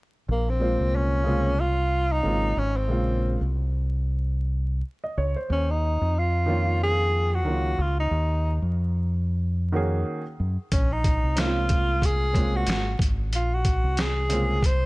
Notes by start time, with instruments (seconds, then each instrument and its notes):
0.29 fingered electric bass A#1, tenor saxophone A#3
0.50 tenor saxophone C4
0.59 grand piano A#2 G#3 A#3 F4 C5
0.79 fingered electric bass C2
0.96 tenor saxophone C#4
1.24 grand piano C#3 G#3 A#3 C4 F4
1.61 tenor saxophone F4
2.13 tenor saxophone D#4
2.22 fingered electric bass G#1, grand piano C#3 G#3 A#3 C4
2.27 grand piano F4
2.57 fingered electric bass G#1, tenor saxophone C#4
2.77 tenor saxophone C4
2.88 fingered electric bass A#1, grand piano C#3 G#3 A#3 C4 F4
3.41 fingered electric bass C2
5.04 grand piano D#5
5.17 fingered electric bass C#2, grand piano C#5
5.36 grand piano C5
5.50 fingered electric bass D#2, tenor saxophone C#4
5.71 tenor saxophone D#4
6.01 fingered electric bass F2
6.19 tenor saxophone F4
6.46 grand piano D#3 F3 A#3 C#4 F4
6.84 tenor saxophone G#4
7.35 tenor saxophone F#4
7.45 fingered electric bass C#2, grand piano D#3 F#3 A#3 C#4 F4
7.78 fingered electric bass C#2, tenor saxophone F4
8.00 tenor saxophone D#4
8.11 fingered electric bass D#2
8.62 fingered electric bass F2
9.72 grand piano D#3 A#3 C#4 F#4
9.76 grand piano G#4
10.40 fingered electric bass F#2
10.72 fingered electric bass A#1, tenor saxophone C#4, kick, closed hi-hat
10.93 tenor saxophone D#4
11.04 kick, closed hi-hat
11.23 fingered electric bass C2
11.36 grand piano G#3 A#3 C4 C#4 D#4, snare, closed hi-hat
11.40 tenor saxophone F4
11.46 grand piano F4
11.69 kick, closed hi-hat
12.02 tenor saxophone G#4, kick, closed hi-hat
12.33 grand piano G#3 A#3 C4 C#4 F4, kick, closed hi-hat
12.56 tenor saxophone F#4
12.67 fingered electric bass G#1, snare, closed hi-hat
12.99 fingered electric bass G#1, kick, closed hi-hat
13.33 fingered electric bass A#1, tenor saxophone F4, closed hi-hat
13.54 tenor saxophone F#4
13.65 kick, closed hi-hat
13.84 fingered electric bass C2
13.97 tenor saxophone G#4, snare, closed hi-hat
14.29 grand piano C#3 G#3 A#3 C4 F4, closed hi-hat
14.63 tenor saxophone C5, kick, closed hi-hat